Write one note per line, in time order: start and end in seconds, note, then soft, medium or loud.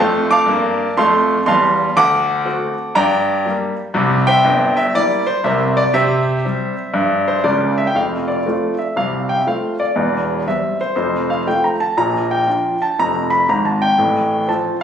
0.00 0.37 F2 medium
0.00 0.38 A3 medium
0.00 0.28 C5 medium
0.00 0.28 F5 medium
0.00 0.30 A5 medium
0.31 0.94 F5 medium
0.31 0.93 A5 medium
0.31 0.97 D6 loud
0.46 0.86 G2 medium
0.46 0.87 A#3 medium
0.97 1.36 F2 medium
0.97 1.37 A3 medium
0.97 1.44 F5 medium
0.97 1.43 A5 medium
0.97 1.45 C6 loud
1.46 1.86 E2 medium
1.46 1.87 G3 medium
1.46 1.93 F5 medium
1.46 1.93 A5 medium
1.46 1.96 C6 medium
1.97 2.39 D2 medium
1.97 2.92 F#5 loud
1.97 2.93 A5 medium
1.97 2.96 D6 loud
2.45 2.73 A3 soft
2.45 2.73 C4 medium
2.45 2.73 F#4 medium
2.95 3.38 G2 medium
2.95 3.42 D5 medium
2.95 3.42 G5 medium
2.95 3.45 A#5 loud
3.45 3.73 G3 medium
3.45 3.73 A#3 medium
3.45 3.73 G4 medium
3.94 4.34 C2 medium
3.94 4.35 C3 medium
4.27 4.74 C5 medium
4.27 4.74 E5 medium
4.27 4.77 G5 loud
4.44 4.85 G1 medium
4.44 4.84 G2 medium
4.77 4.94 E5 medium
4.94 5.22 G3 medium
4.94 5.22 A#3 soft
4.94 5.22 E4 medium
4.94 5.28 D5 loud
5.27 5.44 C5 medium
5.44 5.84 C2 medium
5.44 5.84 C3 medium
5.44 5.76 A#4 medium
5.44 5.76 C5 medium
5.44 5.77 E5 medium
5.77 5.94 D5 medium
5.94 6.36 C3 medium
5.94 6.44 G4 medium
5.94 7.26 C5 medium
5.94 7.44 E5 loud
6.45 6.72 G3 medium
6.45 6.73 C4 soft
6.45 6.73 G4 soft
6.94 7.36 G2 medium
7.28 7.45 C5 medium
7.44 7.84 C#2 medium
7.44 7.84 C#3 medium
7.44 7.77 D5 medium
7.78 7.86 E5 medium
7.87 7.95 G5 medium
7.95 8.38 F1 soft
7.95 8.37 F2 medium
7.95 8.28 F5 medium
8.28 8.78 D5 medium
8.46 8.73 A3 soft
8.46 8.73 C4 soft
8.46 8.74 F4 soft
8.79 8.95 E5 soft
8.96 9.39 C2 soft
8.96 9.38 C3 soft
8.96 9.29 F5 medium
9.29 9.37 G5 medium
9.38 9.46 E5 soft
9.47 9.74 A3 soft
9.47 9.74 C4 soft
9.47 9.75 F4 soft
9.47 9.79 F5 medium
9.80 10.46 D5 medium
9.96 10.38 E1 medium
9.96 10.38 E2 medium
10.48 10.75 G3 soft
10.48 10.75 C4 soft
10.48 10.79 E5 medium
10.81 10.95 C5 medium
10.96 11.39 F1 soft
10.96 11.38 F2 medium
10.96 11.29 C5 medium
11.30 11.47 F5 medium
11.47 11.75 A3 soft
11.47 11.75 C4 soft
11.47 11.75 F4 soft
11.47 11.63 G5 medium
11.64 11.80 A#5 medium
11.80 11.97 A5 medium
11.97 12.39 A#1 medium
11.97 12.40 A#2 medium
11.97 12.30 A#5 medium
12.31 12.80 G5 medium
12.47 12.74 F3 soft
12.47 12.75 D4 soft
12.47 12.75 F4 soft
12.82 12.98 A5 medium
12.99 13.41 F1 medium
12.99 13.41 F2 medium
12.99 13.31 A#5 medium
13.30 13.47 B5 medium
13.49 13.88 G#1 medium
13.49 13.88 G#2 soft
13.49 13.64 A#5 medium
13.65 13.81 A5 medium
13.82 14.48 G5 medium
13.98 14.40 A1 medium
13.98 14.40 A2 medium
14.48 14.75 F3 soft
14.48 14.75 C4 soft
14.48 14.76 F4 soft
14.48 14.81 A5 medium